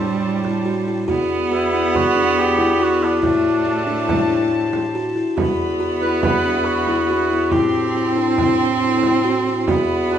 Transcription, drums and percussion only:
0.23 frame drum soft
0.45 frame drum soft
1.08 frame drum medium
1.30 frame drum soft
1.95 frame drum medium
2.59 frame drum soft
3.23 frame drum medium
3.87 frame drum soft
4.09 frame drum medium
4.73 frame drum medium
5.37 frame drum medium
5.58 frame drum soft
6.23 frame drum medium
6.65 frame drum soft
6.87 frame drum soft
7.51 frame drum medium
7.73 frame drum soft
8.38 frame drum medium
8.82 frame drum soft
9.03 frame drum medium
9.67 frame drum medium
9.89 frame drum soft

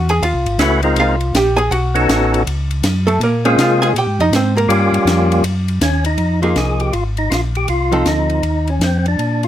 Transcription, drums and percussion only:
0.09 ride medium
0.23 ride medium
0.46 ride medium
0.59 snare medium
0.59 hi-hat pedal medium
0.59 ride medium
0.83 ride medium
0.96 ride medium
1.20 ride soft
1.35 snare medium
1.35 hi-hat pedal medium
1.35 ride medium
1.58 ride medium
1.72 ride medium
1.95 ride medium
2.09 snare medium
2.09 hi-hat pedal medium
2.09 ride medium
2.34 ride medium
2.47 ride medium
2.71 ride medium
2.83 snare medium
2.83 hi-hat pedal medium
2.83 ride medium
3.08 ride medium
3.21 ride medium
3.45 ride medium
3.59 snare medium
3.59 hi-hat pedal medium
3.59 ride medium
3.83 ride medium
3.96 ride medium
4.20 ride medium
4.33 snare medium
4.33 hi-hat pedal medium
4.33 ride medium
4.58 ride medium
4.70 ride medium
4.94 ride medium
5.07 snare medium
5.07 hi-hat pedal medium
5.07 ride medium
5.32 ride medium
5.44 ride medium
5.68 ride medium
5.81 snare medium
5.81 hi-hat pedal medium
5.81 ride medium
6.05 ride medium
6.18 ride medium
6.43 ride soft
6.56 snare medium
6.56 hi-hat pedal soft
6.56 ride medium
6.80 ride soft
6.93 ride medium
7.17 ride soft
7.32 snare medium
7.32 hi-hat pedal medium
7.32 ride medium
7.55 ride soft
7.68 ride medium
7.92 ride soft
8.06 snare medium
8.06 hi-hat pedal medium
8.06 ride medium
8.30 ride soft
8.43 ride medium
8.67 ride soft
8.81 snare medium
8.81 hi-hat pedal medium
8.81 ride medium
9.06 ride soft
9.19 ride medium
9.43 ride soft

